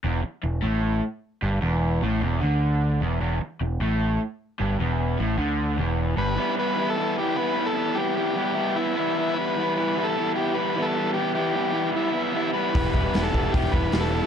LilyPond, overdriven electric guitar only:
\new Staff \with { instrumentName = "Overdriven electric guitar" } { \clef bass \time 4/4 \key e \minor \tempo 4 = 151 e,8 r8 e,8 a,4 r4 g,8 | e,4 a,8 e,8 d4. e,8 | e,8 r8 e,8 a,4 r4 g,8 | e,4 a,8 d4 e,4 g,8 |
<e g b e'>8 <g b e'>8 <e g b e'>8 <e g b e'>8 <e g b e'>8 <e g b e'>8 <e g b e'>8 <g b e'>8 | <e g b e'>8 <g b e'>8 <e g b e'>8 <e g b e'>8 <e g b e'>8 <e g b e'>8 <e g b e'>8 <g b e'>8 | <e g b e'>8 <g b e'>8 <e g b e'>8 <e g b e'>8 <e g b e'>8 <e g b e'>8 <e g b e'>8 <g b e'>8 | <e g b e'>8 <g b e'>8 <e g b e'>8 <e g b e'>8 <e g b e'>8 <e g b e'>8 <e g b e'>8 <g b e'>8 |
<e g b e'>8 <g b e'>8 <e g b e'>8 <e g b e'>8 <e g b e'>8 <e g b e'>8 <e g b e'>8 <g b e'>8 | }